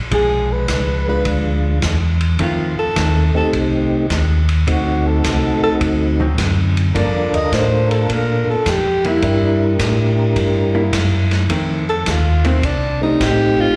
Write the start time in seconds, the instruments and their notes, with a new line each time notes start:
0.11 tonewheel organ B1, hollow-body jazz guitar F3 G#3 D4, alto saxophone G#4, kick, ride
0.53 alto saxophone B4
0.68 tonewheel organ C#2, kick, snare, hi-hat pedal, ride
1.08 tonewheel organ G#3 D4 F4, alto saxophone B4
1.25 tonewheel organ D2, kick, ride
1.82 tonewheel organ E2, kick, snare, hi-hat pedal, ride
2.21 ride
2.39 tonewheel organ F2, hollow-body jazz guitar D#3 A3 C4, kick, ride
2.43 alto saxophone F4
2.76 tonewheel organ F2, alto saxophone A4
2.96 tonewheel organ D#2, hollow-body jazz guitar D#3 A3 C4, kick, snare, hi-hat pedal, ride
3.33 tonewheel organ D#2 A3 C4 D#4 G4, alto saxophone A4
3.53 tonewheel organ C2, kick, ride
4.10 tonewheel organ D#2, kick, snare, hi-hat pedal, ride
4.49 ride
4.67 tonewheel organ D2 A3 C4 D#4 F#4, kick, ride
4.72 alto saxophone F#4
5.07 alto saxophone A4
5.24 tonewheel organ C2, kick, snare, hi-hat pedal, ride
5.60 tonewheel organ C2, alto saxophone A4
5.81 tonewheel organ D2, kick, ride
6.20 hollow-body jazz guitar D3 F#3 C4 D#4
6.38 tonewheel organ F#2, kick, snare, hi-hat pedal, ride
6.77 ride
6.94 tonewheel organ G2 D4 F4 A4 A#4, hollow-body jazz guitar F3 A#3 D4, kick, ride
6.99 alto saxophone D5
7.14 tonewheel organ F2
7.32 tonewheel organ D2, alto saxophone D#5, ride
7.52 tonewheel organ A2, alto saxophone C5, kick, snare, hi-hat pedal, ride
7.91 alto saxophone A4, ride
8.09 tonewheel organ A#2, kick, ride
8.13 alto saxophone A#4
8.47 tonewheel organ A#2, alto saxophone A4
8.65 tonewheel organ F2, kick, snare, hi-hat pedal, ride
8.70 alto saxophone G4
9.04 hollow-body jazz guitar G3 A#3 E4, alto saxophone E4, ride
9.22 tonewheel organ G2 D4 E4 G4 A#4, kick, ride
9.79 tonewheel organ A2, kick, snare, hi-hat pedal, ride
10.36 tonewheel organ G2, kick, ride
10.75 hollow-body jazz guitar A#3 E4
10.93 tonewheel organ F#2, kick, snare, hi-hat pedal, ride
11.31 snare, ride
11.49 tonewheel organ F2, hollow-body jazz guitar D#3 A3 C4, kick, ride
11.90 alto saxophone A4
12.06 tonewheel organ D#2, kick, snare, hi-hat pedal, ride
12.11 alto saxophone F4
12.45 hollow-body jazz guitar D#3 A3 C4, alto saxophone C4, ride
12.63 tonewheel organ C2, alto saxophone D4, kick, ride
13.01 tonewheel organ A3 C4 D#4 G4, alto saxophone D#4
13.20 tonewheel organ A1, alto saxophone G4, kick, snare, hi-hat pedal, ride
13.59 tonewheel organ A1, alto saxophone F4